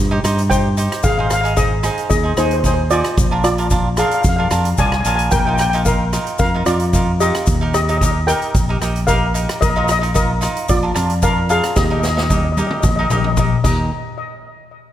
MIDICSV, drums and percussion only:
0, 0, Header, 1, 2, 480
1, 0, Start_track
1, 0, Key_signature, -3, "major"
1, 0, Tempo, 536193
1, 929, Time_signature, 4, 2, 24, 8
1, 13363, End_track
2, 0, Start_track
2, 0, Title_t, "Drums"
2, 219, Note_on_c, 9, 82, 79
2, 221, Note_on_c, 9, 37, 84
2, 221, Note_on_c, 9, 42, 83
2, 308, Note_off_c, 9, 82, 0
2, 311, Note_off_c, 9, 37, 0
2, 311, Note_off_c, 9, 42, 0
2, 344, Note_on_c, 9, 42, 64
2, 434, Note_off_c, 9, 42, 0
2, 454, Note_on_c, 9, 36, 80
2, 458, Note_on_c, 9, 42, 58
2, 460, Note_on_c, 9, 82, 95
2, 543, Note_off_c, 9, 36, 0
2, 548, Note_off_c, 9, 42, 0
2, 550, Note_off_c, 9, 82, 0
2, 692, Note_on_c, 9, 82, 85
2, 695, Note_on_c, 9, 42, 85
2, 781, Note_off_c, 9, 82, 0
2, 785, Note_off_c, 9, 42, 0
2, 825, Note_on_c, 9, 37, 74
2, 825, Note_on_c, 9, 42, 63
2, 914, Note_off_c, 9, 37, 0
2, 914, Note_off_c, 9, 42, 0
2, 923, Note_on_c, 9, 82, 111
2, 931, Note_on_c, 9, 36, 112
2, 934, Note_on_c, 9, 42, 70
2, 1012, Note_off_c, 9, 82, 0
2, 1021, Note_off_c, 9, 36, 0
2, 1023, Note_off_c, 9, 42, 0
2, 1165, Note_on_c, 9, 82, 77
2, 1168, Note_on_c, 9, 37, 87
2, 1168, Note_on_c, 9, 42, 92
2, 1255, Note_off_c, 9, 82, 0
2, 1257, Note_off_c, 9, 37, 0
2, 1257, Note_off_c, 9, 42, 0
2, 1296, Note_on_c, 9, 42, 73
2, 1386, Note_off_c, 9, 42, 0
2, 1406, Note_on_c, 9, 82, 102
2, 1408, Note_on_c, 9, 42, 65
2, 1409, Note_on_c, 9, 36, 89
2, 1495, Note_off_c, 9, 82, 0
2, 1498, Note_off_c, 9, 36, 0
2, 1498, Note_off_c, 9, 42, 0
2, 1643, Note_on_c, 9, 37, 70
2, 1643, Note_on_c, 9, 42, 77
2, 1643, Note_on_c, 9, 82, 74
2, 1732, Note_off_c, 9, 82, 0
2, 1733, Note_off_c, 9, 37, 0
2, 1733, Note_off_c, 9, 42, 0
2, 1769, Note_on_c, 9, 42, 61
2, 1859, Note_off_c, 9, 42, 0
2, 1882, Note_on_c, 9, 42, 58
2, 1882, Note_on_c, 9, 82, 98
2, 1885, Note_on_c, 9, 36, 103
2, 1971, Note_off_c, 9, 82, 0
2, 1972, Note_off_c, 9, 42, 0
2, 1975, Note_off_c, 9, 36, 0
2, 2122, Note_on_c, 9, 82, 76
2, 2123, Note_on_c, 9, 37, 84
2, 2123, Note_on_c, 9, 42, 78
2, 2212, Note_off_c, 9, 82, 0
2, 2213, Note_off_c, 9, 37, 0
2, 2213, Note_off_c, 9, 42, 0
2, 2246, Note_on_c, 9, 42, 61
2, 2335, Note_off_c, 9, 42, 0
2, 2360, Note_on_c, 9, 42, 58
2, 2363, Note_on_c, 9, 36, 84
2, 2371, Note_on_c, 9, 82, 91
2, 2450, Note_off_c, 9, 42, 0
2, 2453, Note_off_c, 9, 36, 0
2, 2460, Note_off_c, 9, 82, 0
2, 2599, Note_on_c, 9, 42, 75
2, 2601, Note_on_c, 9, 82, 74
2, 2689, Note_off_c, 9, 42, 0
2, 2690, Note_off_c, 9, 82, 0
2, 2726, Note_on_c, 9, 37, 76
2, 2726, Note_on_c, 9, 42, 63
2, 2815, Note_off_c, 9, 37, 0
2, 2815, Note_off_c, 9, 42, 0
2, 2839, Note_on_c, 9, 42, 70
2, 2843, Note_on_c, 9, 36, 119
2, 2846, Note_on_c, 9, 82, 90
2, 2929, Note_off_c, 9, 42, 0
2, 2933, Note_off_c, 9, 36, 0
2, 2936, Note_off_c, 9, 82, 0
2, 3078, Note_on_c, 9, 82, 65
2, 3083, Note_on_c, 9, 37, 84
2, 3083, Note_on_c, 9, 42, 74
2, 3168, Note_off_c, 9, 82, 0
2, 3172, Note_off_c, 9, 37, 0
2, 3172, Note_off_c, 9, 42, 0
2, 3207, Note_on_c, 9, 42, 64
2, 3296, Note_off_c, 9, 42, 0
2, 3315, Note_on_c, 9, 82, 101
2, 3316, Note_on_c, 9, 42, 55
2, 3321, Note_on_c, 9, 36, 80
2, 3405, Note_off_c, 9, 42, 0
2, 3405, Note_off_c, 9, 82, 0
2, 3410, Note_off_c, 9, 36, 0
2, 3554, Note_on_c, 9, 82, 74
2, 3555, Note_on_c, 9, 37, 75
2, 3555, Note_on_c, 9, 42, 76
2, 3643, Note_off_c, 9, 82, 0
2, 3644, Note_off_c, 9, 37, 0
2, 3644, Note_off_c, 9, 42, 0
2, 3682, Note_on_c, 9, 42, 61
2, 3771, Note_off_c, 9, 42, 0
2, 3792, Note_on_c, 9, 82, 86
2, 3796, Note_on_c, 9, 42, 66
2, 3800, Note_on_c, 9, 36, 111
2, 3881, Note_off_c, 9, 82, 0
2, 3885, Note_off_c, 9, 42, 0
2, 3890, Note_off_c, 9, 36, 0
2, 4034, Note_on_c, 9, 82, 70
2, 4035, Note_on_c, 9, 37, 79
2, 4035, Note_on_c, 9, 42, 81
2, 4124, Note_off_c, 9, 82, 0
2, 4125, Note_off_c, 9, 37, 0
2, 4125, Note_off_c, 9, 42, 0
2, 4163, Note_on_c, 9, 42, 66
2, 4253, Note_off_c, 9, 42, 0
2, 4275, Note_on_c, 9, 82, 94
2, 4280, Note_on_c, 9, 42, 59
2, 4282, Note_on_c, 9, 36, 75
2, 4365, Note_off_c, 9, 82, 0
2, 4369, Note_off_c, 9, 42, 0
2, 4372, Note_off_c, 9, 36, 0
2, 4405, Note_on_c, 9, 37, 81
2, 4494, Note_off_c, 9, 37, 0
2, 4518, Note_on_c, 9, 42, 82
2, 4518, Note_on_c, 9, 82, 73
2, 4607, Note_off_c, 9, 42, 0
2, 4607, Note_off_c, 9, 82, 0
2, 4644, Note_on_c, 9, 42, 66
2, 4733, Note_off_c, 9, 42, 0
2, 4756, Note_on_c, 9, 82, 95
2, 4758, Note_on_c, 9, 42, 70
2, 4764, Note_on_c, 9, 36, 124
2, 4846, Note_off_c, 9, 82, 0
2, 4848, Note_off_c, 9, 42, 0
2, 4853, Note_off_c, 9, 36, 0
2, 4994, Note_on_c, 9, 82, 74
2, 5006, Note_on_c, 9, 37, 80
2, 5006, Note_on_c, 9, 42, 83
2, 5083, Note_off_c, 9, 82, 0
2, 5096, Note_off_c, 9, 37, 0
2, 5096, Note_off_c, 9, 42, 0
2, 5129, Note_on_c, 9, 42, 75
2, 5219, Note_off_c, 9, 42, 0
2, 5240, Note_on_c, 9, 82, 102
2, 5243, Note_on_c, 9, 42, 59
2, 5245, Note_on_c, 9, 36, 82
2, 5329, Note_off_c, 9, 82, 0
2, 5332, Note_off_c, 9, 42, 0
2, 5334, Note_off_c, 9, 36, 0
2, 5488, Note_on_c, 9, 37, 69
2, 5488, Note_on_c, 9, 42, 81
2, 5488, Note_on_c, 9, 82, 77
2, 5577, Note_off_c, 9, 37, 0
2, 5577, Note_off_c, 9, 42, 0
2, 5578, Note_off_c, 9, 82, 0
2, 5610, Note_on_c, 9, 42, 65
2, 5699, Note_off_c, 9, 42, 0
2, 5715, Note_on_c, 9, 82, 92
2, 5724, Note_on_c, 9, 42, 57
2, 5726, Note_on_c, 9, 36, 102
2, 5804, Note_off_c, 9, 82, 0
2, 5813, Note_off_c, 9, 42, 0
2, 5816, Note_off_c, 9, 36, 0
2, 5962, Note_on_c, 9, 82, 74
2, 5964, Note_on_c, 9, 37, 80
2, 5964, Note_on_c, 9, 42, 88
2, 6052, Note_off_c, 9, 82, 0
2, 6054, Note_off_c, 9, 37, 0
2, 6054, Note_off_c, 9, 42, 0
2, 6084, Note_on_c, 9, 42, 68
2, 6173, Note_off_c, 9, 42, 0
2, 6202, Note_on_c, 9, 42, 58
2, 6207, Note_on_c, 9, 36, 87
2, 6211, Note_on_c, 9, 82, 96
2, 6292, Note_off_c, 9, 42, 0
2, 6297, Note_off_c, 9, 36, 0
2, 6301, Note_off_c, 9, 82, 0
2, 6448, Note_on_c, 9, 42, 77
2, 6450, Note_on_c, 9, 82, 87
2, 6538, Note_off_c, 9, 42, 0
2, 6539, Note_off_c, 9, 82, 0
2, 6578, Note_on_c, 9, 37, 85
2, 6578, Note_on_c, 9, 42, 66
2, 6667, Note_off_c, 9, 37, 0
2, 6667, Note_off_c, 9, 42, 0
2, 6682, Note_on_c, 9, 82, 96
2, 6691, Note_on_c, 9, 36, 122
2, 6693, Note_on_c, 9, 42, 67
2, 6772, Note_off_c, 9, 82, 0
2, 6781, Note_off_c, 9, 36, 0
2, 6783, Note_off_c, 9, 42, 0
2, 6930, Note_on_c, 9, 82, 81
2, 6931, Note_on_c, 9, 37, 77
2, 6931, Note_on_c, 9, 42, 73
2, 7020, Note_off_c, 9, 37, 0
2, 7020, Note_off_c, 9, 42, 0
2, 7020, Note_off_c, 9, 82, 0
2, 7062, Note_on_c, 9, 42, 66
2, 7151, Note_off_c, 9, 42, 0
2, 7173, Note_on_c, 9, 36, 82
2, 7174, Note_on_c, 9, 42, 58
2, 7185, Note_on_c, 9, 82, 105
2, 7262, Note_off_c, 9, 36, 0
2, 7264, Note_off_c, 9, 42, 0
2, 7274, Note_off_c, 9, 82, 0
2, 7412, Note_on_c, 9, 37, 74
2, 7412, Note_on_c, 9, 42, 76
2, 7418, Note_on_c, 9, 82, 71
2, 7501, Note_off_c, 9, 37, 0
2, 7501, Note_off_c, 9, 42, 0
2, 7508, Note_off_c, 9, 82, 0
2, 7536, Note_on_c, 9, 42, 56
2, 7625, Note_off_c, 9, 42, 0
2, 7649, Note_on_c, 9, 42, 54
2, 7652, Note_on_c, 9, 36, 108
2, 7655, Note_on_c, 9, 82, 89
2, 7738, Note_off_c, 9, 42, 0
2, 7741, Note_off_c, 9, 36, 0
2, 7744, Note_off_c, 9, 82, 0
2, 7892, Note_on_c, 9, 37, 78
2, 7892, Note_on_c, 9, 42, 73
2, 7895, Note_on_c, 9, 82, 85
2, 7982, Note_off_c, 9, 37, 0
2, 7982, Note_off_c, 9, 42, 0
2, 7984, Note_off_c, 9, 82, 0
2, 8018, Note_on_c, 9, 42, 58
2, 8107, Note_off_c, 9, 42, 0
2, 8127, Note_on_c, 9, 82, 93
2, 8131, Note_on_c, 9, 42, 61
2, 8132, Note_on_c, 9, 36, 84
2, 8216, Note_off_c, 9, 82, 0
2, 8220, Note_off_c, 9, 42, 0
2, 8222, Note_off_c, 9, 36, 0
2, 8370, Note_on_c, 9, 42, 81
2, 8371, Note_on_c, 9, 82, 78
2, 8459, Note_off_c, 9, 42, 0
2, 8461, Note_off_c, 9, 82, 0
2, 8498, Note_on_c, 9, 37, 83
2, 8498, Note_on_c, 9, 42, 62
2, 8587, Note_off_c, 9, 37, 0
2, 8587, Note_off_c, 9, 42, 0
2, 8613, Note_on_c, 9, 42, 71
2, 8614, Note_on_c, 9, 36, 111
2, 8614, Note_on_c, 9, 82, 101
2, 8703, Note_off_c, 9, 42, 0
2, 8704, Note_off_c, 9, 36, 0
2, 8704, Note_off_c, 9, 82, 0
2, 8847, Note_on_c, 9, 82, 82
2, 8853, Note_on_c, 9, 37, 92
2, 8853, Note_on_c, 9, 42, 82
2, 8937, Note_off_c, 9, 82, 0
2, 8942, Note_off_c, 9, 37, 0
2, 8942, Note_off_c, 9, 42, 0
2, 8980, Note_on_c, 9, 42, 71
2, 9069, Note_off_c, 9, 42, 0
2, 9087, Note_on_c, 9, 82, 96
2, 9091, Note_on_c, 9, 42, 67
2, 9093, Note_on_c, 9, 36, 92
2, 9177, Note_off_c, 9, 82, 0
2, 9181, Note_off_c, 9, 42, 0
2, 9183, Note_off_c, 9, 36, 0
2, 9324, Note_on_c, 9, 82, 75
2, 9337, Note_on_c, 9, 37, 75
2, 9337, Note_on_c, 9, 42, 81
2, 9413, Note_off_c, 9, 82, 0
2, 9427, Note_off_c, 9, 37, 0
2, 9427, Note_off_c, 9, 42, 0
2, 9459, Note_on_c, 9, 42, 66
2, 9548, Note_off_c, 9, 42, 0
2, 9566, Note_on_c, 9, 82, 100
2, 9572, Note_on_c, 9, 42, 63
2, 9573, Note_on_c, 9, 36, 105
2, 9656, Note_off_c, 9, 82, 0
2, 9662, Note_off_c, 9, 36, 0
2, 9662, Note_off_c, 9, 42, 0
2, 9808, Note_on_c, 9, 37, 83
2, 9808, Note_on_c, 9, 42, 86
2, 9811, Note_on_c, 9, 82, 74
2, 9897, Note_off_c, 9, 37, 0
2, 9897, Note_off_c, 9, 42, 0
2, 9900, Note_off_c, 9, 82, 0
2, 9933, Note_on_c, 9, 42, 65
2, 10023, Note_off_c, 9, 42, 0
2, 10047, Note_on_c, 9, 42, 61
2, 10047, Note_on_c, 9, 82, 100
2, 10051, Note_on_c, 9, 36, 86
2, 10136, Note_off_c, 9, 82, 0
2, 10137, Note_off_c, 9, 42, 0
2, 10141, Note_off_c, 9, 36, 0
2, 10287, Note_on_c, 9, 42, 79
2, 10293, Note_on_c, 9, 82, 74
2, 10376, Note_off_c, 9, 42, 0
2, 10382, Note_off_c, 9, 82, 0
2, 10417, Note_on_c, 9, 37, 82
2, 10417, Note_on_c, 9, 42, 64
2, 10506, Note_off_c, 9, 37, 0
2, 10506, Note_off_c, 9, 42, 0
2, 10528, Note_on_c, 9, 82, 92
2, 10529, Note_on_c, 9, 38, 72
2, 10533, Note_on_c, 9, 36, 116
2, 10618, Note_off_c, 9, 82, 0
2, 10619, Note_off_c, 9, 38, 0
2, 10622, Note_off_c, 9, 36, 0
2, 10771, Note_on_c, 9, 82, 78
2, 10774, Note_on_c, 9, 38, 64
2, 10861, Note_off_c, 9, 82, 0
2, 10864, Note_off_c, 9, 38, 0
2, 10899, Note_on_c, 9, 38, 67
2, 10989, Note_off_c, 9, 38, 0
2, 11013, Note_on_c, 9, 36, 87
2, 11014, Note_on_c, 9, 48, 71
2, 11014, Note_on_c, 9, 82, 92
2, 11102, Note_off_c, 9, 36, 0
2, 11104, Note_off_c, 9, 48, 0
2, 11104, Note_off_c, 9, 82, 0
2, 11254, Note_on_c, 9, 48, 74
2, 11258, Note_on_c, 9, 82, 69
2, 11344, Note_off_c, 9, 48, 0
2, 11348, Note_off_c, 9, 82, 0
2, 11374, Note_on_c, 9, 47, 65
2, 11464, Note_off_c, 9, 47, 0
2, 11486, Note_on_c, 9, 82, 97
2, 11488, Note_on_c, 9, 47, 79
2, 11492, Note_on_c, 9, 36, 102
2, 11576, Note_off_c, 9, 82, 0
2, 11577, Note_off_c, 9, 47, 0
2, 11581, Note_off_c, 9, 36, 0
2, 11730, Note_on_c, 9, 45, 88
2, 11731, Note_on_c, 9, 82, 79
2, 11819, Note_off_c, 9, 45, 0
2, 11820, Note_off_c, 9, 82, 0
2, 11855, Note_on_c, 9, 45, 79
2, 11945, Note_off_c, 9, 45, 0
2, 11968, Note_on_c, 9, 82, 94
2, 11969, Note_on_c, 9, 45, 93
2, 11972, Note_on_c, 9, 36, 85
2, 12058, Note_off_c, 9, 45, 0
2, 12058, Note_off_c, 9, 82, 0
2, 12062, Note_off_c, 9, 36, 0
2, 12214, Note_on_c, 9, 36, 103
2, 12215, Note_on_c, 9, 49, 84
2, 12221, Note_on_c, 9, 82, 89
2, 12303, Note_off_c, 9, 36, 0
2, 12305, Note_off_c, 9, 49, 0
2, 12311, Note_off_c, 9, 82, 0
2, 13363, End_track
0, 0, End_of_file